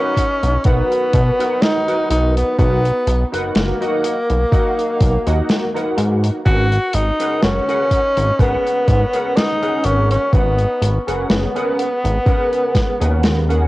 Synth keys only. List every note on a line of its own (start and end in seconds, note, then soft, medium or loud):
0.00 0.27 D#4 medium
0.00 0.27 F#4 medium
0.00 0.27 A#4 medium
0.00 0.27 B4 medium
0.00 0.27 F#5 loud
0.65 1.33 D#4 loud
0.65 1.33 F#4 medium
0.65 1.34 A#4 medium
0.65 1.34 B4 medium
0.65 1.34 F#5 loud
1.39 1.82 D#4 medium
1.39 1.82 F#4 medium
1.39 1.82 A#4 medium
1.39 1.82 B4 medium
1.39 1.82 F#5 loud
1.87 2.53 D#4 medium
1.87 2.53 F#4 medium
1.87 2.53 A#4 medium
1.87 2.54 B4 medium
1.87 2.54 F#5 medium
2.58 2.81 D#4 medium
2.58 2.81 F#4 medium
2.58 2.81 A#4 medium
2.58 2.81 B4 medium
2.58 2.82 F#5 medium
3.32 3.75 D#4 medium
3.32 3.75 F#4 medium
3.32 3.75 A#4 medium
3.32 3.76 B4 medium
3.32 3.76 F#5 loud
3.81 4.13 D#4 medium
3.81 4.14 F#4 medium
3.81 4.14 A#4 medium
3.81 4.14 D#5 medium
3.81 4.14 F#5 loud
4.51 5.20 D#4 medium
4.51 5.20 F#4 medium
4.51 5.21 A#4 medium
4.51 5.21 D#5 medium
4.51 5.21 F#5 loud
5.26 5.69 D#4 medium
5.26 5.69 F#4 medium
5.26 5.69 A#4 medium
5.26 5.69 D#5 medium
5.26 5.69 F#5 loud
5.74 6.40 D#4 medium
5.74 6.40 F#4 medium
5.74 6.41 A#4 medium
5.74 6.41 B4 medium
5.74 6.41 F#5 medium
6.45 6.68 C#4 medium
6.45 6.68 G#4 medium
6.45 6.69 A#4 medium
6.45 6.69 B4 medium
6.45 6.69 F#5 medium
7.19 7.62 C#4 medium
7.19 7.62 G#4 medium
7.19 7.63 A#4 medium
7.19 7.63 B4 medium
7.19 7.63 F#5 loud
7.68 8.01 C#4 medium
7.68 8.01 G#4 medium
7.68 8.01 A#4 medium
7.68 8.01 B4 medium
7.68 8.02 F#5 loud
8.39 9.07 C#4 medium
8.39 9.08 G#4 medium
8.39 9.08 A#4 medium
8.39 9.08 B4 medium
8.39 9.08 F#5 loud
9.13 9.56 C#4 medium
9.13 9.56 G#4 medium
9.13 9.56 A#4 medium
9.13 9.56 B4 medium
9.13 9.57 F#5 loud
9.62 10.27 C#4 medium
9.62 10.28 G#4 medium
9.62 10.28 A#4 medium
9.62 10.28 B4 medium
9.62 10.28 F#5 medium
10.32 10.55 C#4 medium
10.32 10.56 G#4 medium
10.32 10.56 A#4 medium
10.32 10.56 B4 medium
10.32 10.56 F#5 medium
11.07 11.49 C#4 medium
11.07 11.50 G#4 medium
11.07 11.50 A#4 medium
11.07 11.50 B4 medium
11.07 11.50 F#5 loud
11.55 11.88 C#4 medium
11.55 11.88 G#4 medium
11.55 11.88 A#4 medium
11.55 11.88 B4 medium
11.55 11.88 F#5 loud
12.26 12.94 C#4 loud
12.26 12.95 G#4 medium
12.26 12.95 A#4 medium
12.26 12.95 B4 medium
12.26 12.95 F#5 loud
13.00 13.43 C#4 medium
13.00 13.43 G#4 medium
13.00 13.43 A#4 medium
13.00 13.43 B4 medium
13.00 13.44 F#5 medium
13.49 13.68 C#4 medium
13.49 13.68 G#4 medium
13.49 13.68 A#4 medium
13.49 13.68 B4 medium
13.49 13.68 F#5 loud